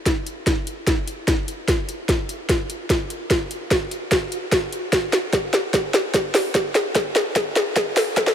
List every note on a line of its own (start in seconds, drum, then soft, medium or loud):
0.06 kick medium
0.06 snare medium
0.06 closed hi-hat medium
0.26 closed hi-hat medium
0.47 kick medium
0.47 snare medium
0.47 closed hi-hat medium
0.67 closed hi-hat medium
0.87 kick loud
0.87 snare medium
0.87 closed hi-hat medium
1.08 closed hi-hat medium
1.28 kick medium
1.28 snare medium
1.28 closed hi-hat medium
1.48 closed hi-hat medium
1.68 kick medium
1.68 snare medium
1.68 closed hi-hat medium
1.89 closed hi-hat medium
2.09 kick medium
2.09 snare medium
2.09 closed hi-hat medium
2.29 closed hi-hat medium
2.49 kick medium
2.49 snare medium
2.49 closed hi-hat medium
2.70 closed hi-hat medium
2.90 kick loud
2.90 snare medium
2.90 closed hi-hat medium
3.10 closed hi-hat medium
3.31 kick loud
3.31 snare medium
3.31 closed hi-hat medium
3.51 closed hi-hat medium
3.71 kick medium
3.71 snare medium
3.71 closed hi-hat medium
3.91 closed hi-hat medium
4.12 kick medium
4.12 snare medium
4.12 closed hi-hat medium
4.32 closed hi-hat medium
4.52 kick loud
4.52 snare medium
4.52 closed hi-hat medium
4.72 closed hi-hat medium
4.93 kick medium
4.93 snare medium
4.93 closed hi-hat medium
5.13 snare medium
5.13 closed hi-hat medium
5.33 kick loud
5.33 snare medium
5.33 closed hi-hat medium
5.54 snare medium
5.54 closed hi-hat medium
5.74 kick medium
5.74 snare medium
5.74 closed hi-hat medium
5.94 snare medium
5.94 closed hi-hat medium
6.14 kick loud
6.14 snare medium
6.14 closed hi-hat medium
6.35 snare medium
6.35 open hi-hat medium
6.55 kick loud
6.55 snare medium
6.55 closed hi-hat medium
6.75 snare medium
6.75 closed hi-hat medium
6.95 kick loud
6.95 snare medium
6.95 closed hi-hat medium
7.16 snare medium
7.16 closed hi-hat medium
7.36 kick loud
7.36 snare medium
7.36 closed hi-hat medium
7.56 snare medium
7.56 closed hi-hat medium
7.76 kick loud
7.76 snare medium
7.76 closed hi-hat medium
7.97 snare medium
7.97 open hi-hat medium
8.17 kick loud
8.17 snare medium
8.17 closed hi-hat medium
8.27 snare medium